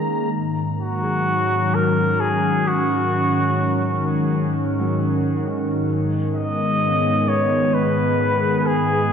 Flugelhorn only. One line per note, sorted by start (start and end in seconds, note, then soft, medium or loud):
0.81 1.76 F#4 medium
1.74 2.22 A#4 medium
2.20 2.69 G#4 medium
2.67 4.50 F#4 medium
6.36 7.30 D#5 medium
7.28 7.75 C#5 medium
7.74 8.67 B4 medium
8.66 9.13 G#4 medium